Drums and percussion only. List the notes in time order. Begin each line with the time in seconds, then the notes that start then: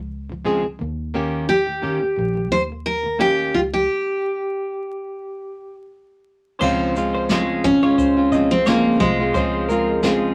6.61 kick, crash
6.96 shaker
7.29 snare, shaker
7.64 kick, shaker
7.98 kick, shaker
8.32 kick, shaker
8.66 snare, shaker
9.00 kick, shaker
9.35 kick, shaker
9.70 shaker
10.03 snare, shaker